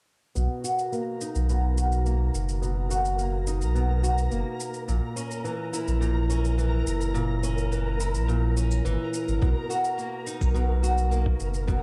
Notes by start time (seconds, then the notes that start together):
0.35 B1 B2 A#4 A#5, shaker
0.64 F#4, shaker
0.79 shaker
0.92 A#3, shaker
1.21 D#4, shaker
1.35 B1, shaker
1.49 B2, shaker
1.77 F#4, shaker
1.92 shaker
2.05 A#3, shaker
2.34 F#1, shaker
2.49 shaker
2.62 B2, shaker
2.90 F#4, shaker
3.05 shaker
3.19 A#3, shaker
3.47 D#4, shaker
3.62 B1, shaker
3.75 B2, shaker
4.03 F#4, shaker
4.18 shaker
4.31 F#1 A#3, shaker
4.60 shaker
4.74 shaker
4.88 A#1 A#2, shaker
5.16 C#4, shaker
5.31 shaker
5.44 E3, shaker
5.73 E4, shaker
5.88 A#1, shaker
6.01 A#2, shaker
6.29 C#4, shaker
6.45 shaker
6.58 E3, shaker
6.87 F#1, shaker
7.01 shaker
7.14 A#2, shaker
7.43 C#4, shaker
7.58 shaker
7.72 E3, shaker
8.00 E4, shaker
8.15 A#1, shaker
8.28 A#2, shaker
8.57 C#4, shaker
8.71 shaker
8.85 G#1 E3, shaker
9.14 shaker
9.28 G#1, shaker
9.41 B1 B2, kick, shaker
9.70 F#4, shaker
9.84 shaker
9.98 A#3, shaker
10.27 D#4, shaker
10.41 B1, kick, shaker
10.54 B2, shaker
10.83 F#4, shaker
10.98 shaker
11.11 A#3, shaker
11.26 kick
11.40 F#1, shaker
11.54 shaker
11.67 B2, kick, shaker